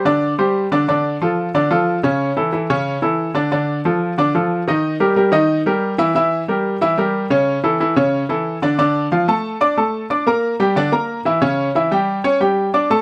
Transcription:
0.05 D3 D4 D5
0.38 G3 G4 C5
0.72 D3 D4 D5
0.88 D3 D4 D5
1.22 F3 F4 A4
1.54 D3 D4 D5
1.71 F3 F4 A4
2.03 C#3 C#4 C#5
2.37 E3 E4 A4
2.52 E3 E4 A4
2.70 C#3 C#4 C#5
3.02 E3 E4 A4
3.34 D3 D4 D5
3.52 D3 D4 D5
3.85 F3 F4 A4
4.18 D3 D4 D5
4.35 F3 F4 A4
4.68 D#3 D#4 D#5
5.00 G3 G4 A#4
5.16 G3 G4 A#4
5.32 D#3 D#4 D#5
5.66 G3 G4 A#4
5.98 E3 E4 E5
6.15 E3 E4 E5
6.48 G3 G4 A#4
6.81 E3 E4 E5
6.98 G3 G4 A#4
7.30 C#3 C#4 C#5
7.64 E3 E4 A4
7.80 E3 E4 A4
7.96 C#3 C#4 C#5
8.29 E3 E4 A4
8.62 D3 D4 D5
8.79 D3 D4 D5
9.12 F3 F4 F5
9.28 A3 A4 A5
9.61 D4 D5 D6
9.77 A3 A4 A5
10.10 D4 D5 D6
10.27 A#3 A#4 A#5
10.60 G3 G4 G5
10.76 D3 D4 D5
10.92 A#3 A#4 A#5
11.25 E3 E4 E5
11.41 C#3 C#4 C#5
11.75 E3 E4 E5
11.91 G3 G4 G5
12.24 C#4 C#5 C#6
12.40 G3 G4 G5
12.74 D4 D5 D6
12.90 A3 A4 A5

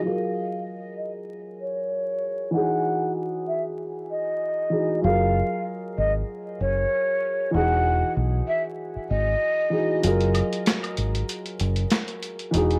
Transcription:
0.02 F#3 F4 G#4 F5
0.08 A#4
0.97 D#5
1.61 C#5
2.51 E3 D#4 F#4 F#5
2.57 G#4
3.48 E5
4.11 D#5
4.70 E3 D#4 F#4 G#4
5.02 F#1 F#3 F4 G#4 F5
5.08 A#4
5.98 G#1 D#5
6.60 F#1 C#5
7.51 E1 E3 D#4 F#4 F#5
7.57 G#4
8.17 B1
8.48 E5
8.96 muted fingered electric bass stroke
9.10 G#1 D#5
9.70 E3 D#4 F#4 G#4
10.02 F#1 F#3 F4 G#4, closed hi-hat, shaker
10.08 A#4
10.21 closed hi-hat
10.34 closed hi-hat, high woodblock, shaker
10.53 closed hi-hat
10.66 snare, clap, closed hi-hat, shaker
10.83 closed hi-hat, high woodblock
10.97 G#1, closed hi-hat, shaker
11.15 closed hi-hat
11.29 closed hi-hat, shaker
11.46 closed hi-hat
11.60 F#1, closed hi-hat, shaker
11.76 closed hi-hat
11.90 snare, clap, closed hi-hat, shaker
12.08 closed hi-hat
12.23 closed hi-hat, shaker
12.39 closed hi-hat
12.51 E1 E3 D#4 F#4, closed hi-hat, shaker
12.57 G#4
12.71 closed hi-hat

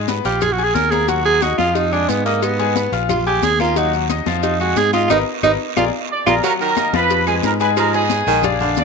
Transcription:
Already playing: G#2
0.08 B3 B4 B5, cowbell, high conga, short guiro, maracas
0.25 A#1 F4 G4 F5 F6, cowbell, high conga, short guiro, maracas
0.41 G#4, cowbell, high conga, low conga, long guiro, claves, maracas
0.52 F#4
0.58 G#4 G#5 G#6, high conga, maracas
0.64 G#4
0.75 D#2 A#4, cowbell, high conga, short guiro, maracas
0.91 A#3 G#4 A#4 A#5, cowbell, high conga, short guiro, claves, maracas
1.08 F#3 F#4 F#5, cowbell, high conga, long guiro, maracas
1.25 G#4, high conga, maracas
1.42 D#4 F#4 D#5 D#6, cowbell, high conga, short guiro, claves, maracas
1.58 F2 F3 F4 F5, high conga, short guiro, maracas
1.75 D#4, cowbell, high conga, long guiro, maracas
1.92 G#3 D4 G#4 G#5, high conga, claves, maracas
2.09 G#2 B3, cowbell, high conga, short guiro, maracas
2.25 A#3 D#4 D#5 D#6, cowbell, short guiro, maracas
2.42 B3, cowbell, high conga, long guiro, claves, maracas
2.59 G#3 G#4 G#5, cowbell, high conga, maracas
2.76 B3 B4 B5, cowbell, high conga, short guiro, maracas
2.92 A#1 F4 F5 F6, cowbell, high conga, short guiro, maracas
3.09 F4, cowbell, high conga, low conga, long guiro, claves, maracas
3.26 G4 G#4 G#5 G#6, high conga, maracas
3.42 D#2 G#4, cowbell, high conga, short guiro, maracas
3.59 A#3 F4 A#4 A#5, cowbell, high conga, short guiro, claves, maracas
3.76 F#3 D#4 F#4 F#5, cowbell, long guiro, maracas
3.93 high conga, maracas
4.10 D#4 D#5 D#6, cowbell, high conga, short guiro, claves, maracas
4.26 F2 F3 F4 F5, high conga, short guiro, maracas
4.43 D#4, cowbell, high conga, long guiro, maracas
4.60 G#3 F#4 G#4 G#5, high conga, claves, maracas
4.76 G#2 G#4, cowbell, high conga, short guiro, maracas
4.93 D#4 F4 D#5 D#6, cowbell, high conga, short guiro, maracas
5.10 G#1 D#4 A#4 B4 D#5, cowbell, high conga, long guiro, claves, maracas
5.43 G#1 D#4 A#4 B4 D#5, cowbell, high conga, long guiro, claves, maracas
5.77 A#1 F4 G#4 A#4 D5, cowbell, high conga, long guiro, claves, maracas
6.11 D5 D6
6.26 A#1 F4 G#4 A#4 D5 A#5, cowbell, high conga, long guiro, claves, maracas
6.43 F#3 F#4 A#4 F#5 A#5, cowbell, high conga, long guiro, maracas
6.60 D#3 A#4 A#5, high conga, maracas
6.77 A#3 A#4 D#5, cowbell, high conga, short guiro, claves, maracas
6.93 F2 F3 F4 B4 F5 B5, high conga, short guiro, maracas
7.10 cowbell, high conga, long guiro, maracas
7.26 F3 G#3 G#4 B4 G#5, high conga, claves, maracas
7.43 G#2 A#4 A#5, cowbell, high conga, short guiro, maracas
7.60 G#3 G#4 B4 G#5 B5, cowbell, short guiro, maracas
7.77 F3 G#3 G#4 A#4 G#5 A#5, cowbell, high conga, long guiro, claves, maracas
7.93 B3 G#4 B4 D#5 G#5, cowbell, high conga, maracas
8.10 cowbell, high conga, short guiro, maracas
8.26 A#1 D#3 G#3 G#4 G#5, cowbell, high conga, short guiro, maracas
8.43 D4 D5 F5, cowbell, high conga, low conga, long guiro, claves, maracas
8.60 D3 D4 D5 F5, high conga, low conga, maracas
8.77 D#2 D5 D6, cowbell, high conga, short guiro, maracas

